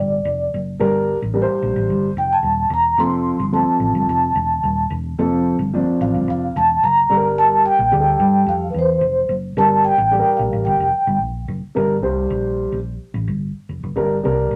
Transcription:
0.00 0.21 G1 medium
0.00 0.50 D5 medium
0.25 0.48 F1 loud
0.54 0.76 F#1 medium
0.80 1.14 G1 loud
0.80 1.15 G3 medium
0.80 1.16 D4 medium
0.80 1.16 A#4 loud
1.22 1.44 A1 medium
1.34 2.06 G3 medium
1.34 2.06 D4 medium
1.34 1.41 A#4 medium
1.42 2.10 C5 loud
1.62 1.74 A#1 medium
1.76 1.87 A1 medium
1.90 2.12 G1 medium
2.17 2.39 F1 medium
2.17 2.32 G5 medium
2.33 2.70 A5 medium
2.42 2.66 D#1 medium
2.70 2.93 E1 medium
2.70 3.01 A#5 medium
2.98 3.32 F1 loud
2.98 3.34 F3 medium
2.98 3.35 C4 medium
2.98 3.35 A4 medium
2.98 3.56 C6 loud
3.39 3.62 G1 medium
3.52 4.24 F3 medium
3.52 4.24 C4 medium
3.52 4.24 A4 medium
3.52 4.04 A5 medium
3.80 3.92 A1 medium
3.95 4.06 G1 medium
4.09 4.31 F1 medium
4.09 4.87 A5 medium
4.35 4.58 E1 medium
4.63 4.86 D#1 medium
4.90 5.13 E1 medium
5.19 5.52 F1 loud
5.19 5.54 F3 medium
5.19 5.54 C4 medium
5.19 5.54 A4 loud
5.59 5.81 G1 medium
5.73 6.44 F3 medium
5.73 6.45 C4 medium
5.73 6.45 D4 medium
6.01 6.12 A1 medium
6.01 6.29 F5 loud
6.14 6.25 G1 medium
6.28 6.50 F1 medium
6.28 6.57 F5 loud
6.56 6.78 E1 loud
6.56 6.84 A5 loud
6.83 7.05 F#1 loud
6.83 7.21 A#5 loud
7.10 7.67 G1 medium
7.10 7.75 G3 medium
7.10 7.75 D4 medium
7.10 7.16 A4 medium
7.17 7.79 A#4 medium
7.38 7.63 A5 loud
7.66 8.50 G5 loud
7.79 7.90 A#1 loud
7.91 8.14 D2 medium
7.91 8.63 G3 medium
7.91 8.64 D4 medium
7.91 7.98 G#4 medium
8.00 8.67 A4 medium
8.20 8.42 G2 loud
8.46 8.69 F2 medium
8.46 8.67 F5 loud
8.70 8.97 E2 medium
8.70 8.76 B4 medium
8.79 9.27 C5 medium
9.01 9.24 F1 medium
9.29 9.52 F#1 medium
9.57 9.91 G1 loud
9.57 9.92 G3 medium
9.57 9.93 D4 medium
9.57 9.93 A#4 medium
9.57 9.83 A5 loud
9.85 10.35 G5 loud
9.98 10.20 A1 loud
10.11 10.83 G3 medium
10.11 10.83 D4 medium
10.11 10.18 A4 medium
10.19 10.87 A#4 medium
10.37 10.50 A#1 medium
10.37 10.63 F5 medium
10.53 10.64 A1 medium
10.65 10.78 G1 medium
10.65 11.17 G5 medium
10.80 10.91 F1 medium
11.07 11.21 G1 medium
11.21 11.44 A#1 medium
11.48 11.60 F#1 medium
11.75 12.04 G1 loud
11.75 11.94 G3 medium
11.75 11.94 D4 medium
11.75 11.94 A#4 medium
12.02 12.27 C2 medium
12.02 12.75 G3 medium
12.02 12.75 D4 medium
12.02 12.75 C5 medium
12.30 12.65 A#1 medium
12.72 12.95 A#1 medium
13.14 13.25 A1 loud
13.28 13.51 G1 medium
13.69 13.81 F1 medium
13.83 13.95 F#1 medium
13.96 14.19 G1 medium
13.96 14.14 G3 medium
13.96 14.15 D4 medium
13.96 14.15 A#4 medium
14.23 14.48 C2 medium
14.23 14.56 G3 medium
14.23 14.56 D4 medium
14.23 14.56 A#4 loud
14.51 14.56 A#1 medium

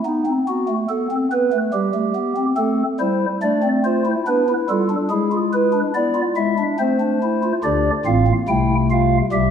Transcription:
0.05 0.23 B3 medium
0.05 0.31 D#4 medium
0.26 0.44 C4 medium
0.48 0.66 B3 medium
0.48 0.74 F#4 medium
0.68 0.86 A3 medium
0.89 1.07 B3 medium
0.89 1.15 A4 medium
1.11 1.29 C4 medium
1.31 1.50 B3 medium
1.31 1.57 B4 medium
1.53 1.70 A3 medium
1.74 1.91 G3 medium
1.74 2.46 G4 medium
1.94 2.12 A3 medium
2.15 2.33 B3 medium
2.37 2.55 C4 medium
2.57 2.83 A3 medium
2.57 2.83 C4 medium
2.57 2.83 A4 medium
2.99 3.26 G3 medium
2.99 3.26 E4 medium
2.99 3.26 C5 medium
3.42 4.15 A3 medium
3.42 3.60 D4 medium
3.42 3.68 D5 medium
3.63 3.81 C4 medium
3.84 4.03 F4 medium
3.84 4.11 C5 medium
4.06 4.24 E4 medium
4.27 4.53 B3 medium
4.27 4.45 D4 medium
4.27 4.53 B4 medium
4.49 4.66 E4 medium
4.70 4.96 G3 medium
4.70 4.88 F4 medium
4.70 4.96 A4 medium
4.90 5.08 D4 medium
5.10 5.83 G#3 medium
5.10 5.29 E4 medium
5.10 5.36 G#4 medium
5.32 5.50 F4 medium
5.53 5.71 E4 medium
5.53 5.79 B4 medium
5.73 5.92 D4 medium
5.95 6.21 B3 medium
5.95 6.13 E4 medium
5.95 6.21 D5 medium
6.15 6.34 F4 medium
6.36 6.63 G#3 medium
6.36 6.55 E4 medium
6.36 6.63 E5 medium
6.58 6.77 D4 medium
6.79 7.52 A3 medium
6.79 6.98 C4 medium
6.79 7.52 C5 medium
7.00 7.19 D4 medium
7.23 7.41 E4 medium
7.43 7.62 F4 medium
7.64 7.91 D2 medium
7.64 7.91 D3 medium
7.64 7.90 D4 medium
7.64 7.90 G4 medium
7.64 7.90 D5 medium
8.06 8.32 A1 soft
8.06 8.32 A2 medium
8.06 8.24 C4 medium
8.06 8.32 F4 soft
8.06 8.32 F5 medium
8.27 8.46 A#3 medium
8.48 9.21 C2 medium
8.48 9.22 C3 medium
8.48 9.22 A3 medium
8.48 8.75 E4 medium
8.48 8.75 G5 medium
8.91 9.17 F4 medium
8.91 9.17 F5 medium
9.32 9.51 C2 medium
9.32 9.51 C3 medium
9.32 9.51 G3 medium
9.32 9.51 G4 medium
9.32 9.51 E5 medium

